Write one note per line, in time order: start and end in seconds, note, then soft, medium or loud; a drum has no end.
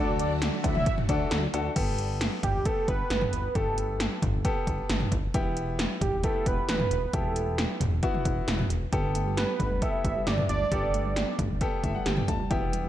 0.00 0.50 D2 loud
0.00 1.74 D3 medium
0.00 1.74 F#3 medium
0.00 1.74 A3 medium
0.00 0.61 D4 medium
0.00 0.61 F#4 medium
0.00 1.74 F#4 medium
0.00 0.61 A4 loud
0.00 0.11 D5 loud
0.19 0.33 D5 medium
0.19 closed hi-hat medium
0.42 snare loud
0.42 closed hi-hat medium
0.64 0.88 D2 medium
0.64 0.96 E5 medium
0.64 kick loud
0.64 closed hi-hat medium
0.64 cowbell medium
0.75 mid tom loud
0.86 kick loud
0.86 closed hi-hat medium
0.98 mid tom loud
1.09 1.25 D2 loud
1.09 1.41 D4 medium
1.09 1.41 F#4 medium
1.09 1.41 A4 loud
1.09 1.16 D5 medium
1.09 kick medium
1.09 closed hi-hat medium
1.31 1.47 D2 loud
1.31 snare loud
1.31 closed hi-hat medium
1.54 1.69 D2 loud
1.54 1.70 D4 medium
1.54 1.70 F#4 medium
1.54 1.70 A4 medium
1.54 closed hi-hat medium
1.54 cowbell medium
1.76 2.29 G1 loud
1.76 2.40 B3 medium
1.76 2.40 G4 medium
1.76 2.40 A4 medium
1.76 kick loud
1.76 closed hi-hat medium
1.76 crash medium
1.99 closed hi-hat medium
2.21 snare loud
2.21 closed hi-hat medium
2.43 2.67 G1 loud
2.43 2.67 G4 medium
2.43 kick medium
2.43 closed hi-hat medium
2.43 mid tom medium
2.65 3.30 B3 medium
2.65 3.30 G4 medium
2.65 2.88 A4 loud
2.65 3.30 A4 medium
2.65 kick loud
2.65 closed hi-hat medium
2.88 3.04 G1 loud
2.88 3.09 B4 loud
2.88 kick medium
2.88 closed hi-hat medium
3.10 3.26 G1 loud
3.10 3.57 B4 loud
3.10 snare loud
3.10 closed hi-hat medium
3.21 mid tom medium
3.33 3.48 G1 medium
3.33 closed hi-hat medium
3.55 4.08 G1 loud
3.55 4.20 B3 medium
3.55 4.20 G4 medium
3.55 4.20 A4 medium
3.55 4.00 A4 medium
3.55 kick loud
3.55 closed hi-hat medium
3.78 closed hi-hat medium
4.00 snare loud
4.00 closed hi-hat medium
4.22 4.46 G1 loud
4.22 kick loud
4.22 closed hi-hat medium
4.22 mid tom medium
4.45 5.09 B3 medium
4.45 5.09 G4 medium
4.45 5.09 A4 medium
4.45 kick loud
4.45 closed hi-hat medium
4.67 4.83 G1 medium
4.67 kick medium
4.67 closed hi-hat medium
4.90 5.05 G1 loud
4.90 snare loud
4.90 closed hi-hat medium
5.00 mid tom medium
5.12 5.27 G1 loud
5.12 kick medium
5.12 closed hi-hat medium
5.34 5.87 E1 loud
5.34 5.99 B3 medium
5.34 5.99 E4 medium
5.34 5.99 G4 medium
5.34 kick loud
5.34 closed hi-hat medium
5.57 closed hi-hat medium
5.79 snare loud
5.79 closed hi-hat medium
6.01 6.25 E1 medium
6.01 6.22 G4 medium
6.01 kick loud
6.01 closed hi-hat medium
6.01 mid tom loud
6.24 6.88 B3 medium
6.24 6.88 E4 medium
6.24 6.88 G4 medium
6.24 6.48 A4 medium
6.24 kick loud
6.24 closed hi-hat medium
6.46 6.62 E1 loud
6.46 6.68 B4 loud
6.46 kick medium
6.46 closed hi-hat medium
6.69 6.84 E1 loud
6.69 7.15 B4 loud
6.69 snare loud
6.69 closed hi-hat medium
6.80 mid tom medium
6.91 7.07 E1 loud
6.91 closed hi-hat medium
7.13 7.67 E1 loud
7.13 7.78 B3 medium
7.13 7.78 E4 medium
7.13 7.78 G4 medium
7.13 7.58 A4 medium
7.13 kick loud
7.13 closed hi-hat medium
7.36 closed hi-hat medium
7.58 snare loud
7.58 closed hi-hat medium
7.80 8.04 E1 loud
7.80 closed hi-hat medium
7.80 mid tom loud
8.03 8.67 B3 medium
8.03 8.67 E4 medium
8.03 8.67 F#4 medium
8.03 kick loud
8.03 closed hi-hat medium
8.14 mid tom medium
8.25 8.41 E1 loud
8.25 kick medium
8.25 closed hi-hat medium
8.48 8.63 E1 medium
8.48 snare loud
8.48 closed hi-hat medium
8.59 mid tom medium
8.70 8.86 E1 medium
8.70 closed hi-hat medium
8.93 9.46 G1 loud
8.93 9.57 B3 medium
8.93 9.01 G4 medium
8.93 9.57 G4 medium
8.93 9.57 A4 medium
8.93 kick loud
8.93 closed hi-hat medium
9.04 9.12 B3 medium
9.15 9.24 A3 medium
9.15 closed hi-hat medium
9.26 9.35 G3 medium
9.37 9.46 G4 medium
9.37 9.84 B4 medium
9.37 snare loud
9.37 closed hi-hat medium
9.49 9.57 B3 medium
9.60 9.83 G1 loud
9.60 9.68 A3 medium
9.60 kick loud
9.60 closed hi-hat medium
9.60 mid tom loud
9.71 9.80 G3 medium
9.82 10.46 B3 medium
9.82 10.46 G4 medium
9.82 10.46 A4 medium
9.82 10.28 E5 loud
9.82 kick loud
9.82 closed hi-hat medium
10.04 10.20 G1 loud
10.04 10.13 A3 medium
10.04 kick medium
10.04 closed hi-hat medium
10.16 10.24 G3 medium
10.27 10.43 G1 medium
10.27 10.36 G4 medium
10.27 10.49 D5 medium
10.27 snare loud
10.27 closed hi-hat medium
10.38 10.47 B3 medium
10.38 mid tom medium
10.49 10.65 G1 medium
10.49 10.58 A3 medium
10.49 11.35 D5 medium
10.49 closed hi-hat medium
10.60 10.69 G3 medium
10.71 11.25 G1 loud
10.71 11.36 B3 medium
10.71 10.80 G4 medium
10.71 11.36 G4 medium
10.71 11.36 A4 medium
10.71 kick loud
10.71 closed hi-hat medium
10.83 10.92 B3 medium
10.94 11.03 A3 medium
10.94 closed hi-hat medium
11.05 11.14 G3 medium
11.16 11.25 G4 medium
11.16 snare loud
11.16 closed hi-hat medium
11.27 11.36 B3 medium
11.39 11.62 G1 loud
11.39 11.48 A3 medium
11.39 kick loud
11.39 closed hi-hat medium
11.39 mid tom loud
11.50 11.59 G3 medium
11.61 12.26 B3 medium
11.61 12.26 G4 medium
11.61 12.26 A4 medium
11.61 kick loud
11.61 closed hi-hat medium
11.84 11.99 G1 loud
11.84 11.92 A3 medium
11.84 11.94 E5 medium
11.84 kick medium
11.84 closed hi-hat medium
11.95 12.04 G3 medium
11.95 12.05 F#5 medium
12.06 12.22 G1 loud
12.06 12.15 G4 medium
12.06 12.27 G5 medium
12.06 snare loud
12.06 closed hi-hat medium
12.17 12.26 B3 medium
12.17 mid tom medium
12.28 12.44 G1 loud
12.28 12.37 A3 medium
12.28 12.49 A5 medium
12.28 kick medium
12.28 closed hi-hat medium
12.40 12.48 G3 medium
12.50 12.89 E1 loud
12.50 12.89 B3 medium
12.50 12.89 E4 medium
12.50 12.60 E4 loud
12.50 12.89 G4 medium
12.50 kick loud
12.50 closed hi-hat medium
12.62 12.71 B3 medium
12.73 12.82 G3 medium
12.73 closed hi-hat medium
12.84 12.89 E3 medium